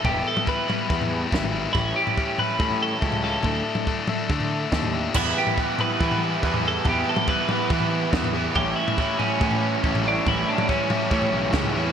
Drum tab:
CC |----------------|----------------|----------------|x---------------|
SD |------------o---|----------------|------------o---|----------------|
T2 |---o--o-----o---|----------------|---o--o-----o---|----------------|
FT |o--o--o--o---o--|o--o--o--o---o--|o--o--o--o---o--|o--o--o--o---o--|
BD |o---o---o---o---|o---o---o---o---|o---o---o---o---|o---o---o---o---|

CC |----------------|----------------|----------------|
SD |------------o---|----------------|------------o---|
T2 |---o--o-----o---|----------------|---o--o-----o---|
FT |o--o--o--o---o--|o--o--o--o---o--|o--o--o--o---o--|
BD |o---o---o---o---|o---o---o---o---|o---o---o---o---|